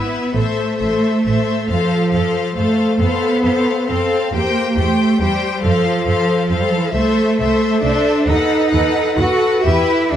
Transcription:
Already playing: B3 E4 B4 E5
0.34 A1 A3 A4 C5 E5
0.78 A1 A4 C5 E5
1.24 A1 A4 C5 E5
1.70 F2 F3 A4 C5 F5
2.12 F2 A4 C5 F5
2.56 F2 A3 A4 C5 F5
3.00 F2 B3 A4 C5 F5
3.43 F2 A4 C5 F5
3.87 F2 C4 A4 C5 F5
4.32 E2 A#3 G4 C5
4.37 G5
4.77 E2 A3 G4 C5 G5
5.19 E2 G3 G4 C5 G5
5.64 F2 F3 A4 C5 F5
6.07 F2 A4 C5 F5
6.50 F2 A4 C5 F5
6.60 G3
6.69 F3
6.77 E3
6.86 F3
6.93 C2 A3 A4 C5 E5
7.39 C2 A4 C5 E5
7.82 C2 D4 A4 C5 E5
8.26 D#2 D#4 A4 B4 F#5
8.71 D#2 A4 B4 F#5
9.16 D#2 F#4 A4 F#5
9.20 B4
9.58 F#4
9.63 E2 E4 G4 B4 E5
10.10 E2 D4 G4 E5

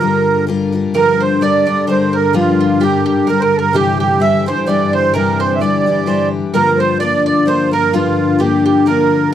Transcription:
Already playing: G2 D3 A#4
0.01 D3 G3 F4 A#4
0.47 D3 G3 F4 A#4
0.72 D3 G3 F4 A#4
0.94 G2 D3 F3 G3 D4 A#4
1.20 C5
1.41 D3 G3 D4 A#4 D5
1.66 D3 G3 D4 A#4 D5
1.87 D3 G3 D4 A#4 C5
2.13 A#4
2.33 G2 D3 F3 G3 D4 F4 A#4
2.60 F4
2.80 D3 G3 D4 G4 A#4
3.06 G4
3.27 D3 G3 D4 A#4
3.40 A#4 C5
3.57 A4 A#4
3.73 C3 E3 G3 D4 G4
4.00 G4
4.20 E3 G3 D4 G4 E5
4.46 E3 G3 D4 G4 C5
4.66 E3 G3 D4 G4 D5
4.93 C5
5.14 C3 E3 G3 D4 G4 A#4
5.40 C5
5.56 E5
5.61 E3 G3 D4 G4 D5
5.86 E3 G3 D4 G4
6.06 E3 G3 D4 G4 C5
6.53 G2 D3 F3 A#3 D4 F4 A#4
6.78 C5
7.00 F3 A#3 D4 F4 D5
7.26 D5
7.46 F3 A#3 D4 F4 C5
7.71 F3 A#3 D4 F4 A#4
7.93 G2 D3 F3 A#3 D4 F4
8.39 F3 A#3 D4 F4 G4
8.66 G4
8.86 F3 A#3 D4 F4 A#4

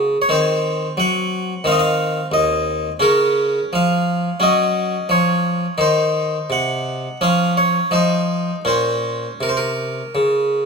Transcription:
Already playing: C#3 A#3
0.22 C#5
0.29 D#3 C4 C5
0.97 F#3 F#5
1.64 D#3 C4 F5
1.72 D#5
1.79 F5
2.32 D#2 D#5
3.00 C#3 C#4 A#4
3.73 F3 F5
4.40 F#3 C#4 D#5
5.09 F3 C#5
5.78 D#3 D#4 C5
6.50 C3 F#5
7.21 F3 C#4 F5
7.57 C#5
7.91 F3 D#4 C5
8.65 A#2 C#4 C5
9.41 C3 A#4
9.49 C5
9.57 A#4
10.15 C#3

